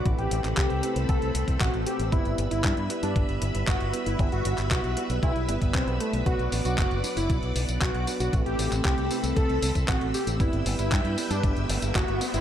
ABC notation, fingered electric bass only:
X:1
M:4/4
L:1/16
Q:1/4=116
K:Em
V:1 name="Fingered electric bass" clef=bass
A,,, A,,, A,,, A,,, C,, C,, z C,, C,, C,, C,, C,, A,,, A,,, z A,,, | G,,, G,,, G,,, G,,, G,, G,, z G,, G,,, G,,, G,,, G,,, G,,, G,,, z G,,, | G,,, G,,, G,,, G,,, B,,, B,,, z B,,, B,,, B,,, G,,, G,,, B,,, B,,, z B,,, | B,,, B,,, A,,, B,,, F,,, F,,, z F,,, B,,, B,,, B,,, B,,, B,,, B,,, z B,,, |
A,,, A,,, A,,, A,,, C,, C,, z C,, C,, C,, C,, C,, A,,, A,,, z A,,, | G,,, G,,, G,,, G,,, G,, G,, z G,, G,,, G,,, G,,, G,,, G,,, G,,, z G,,, |]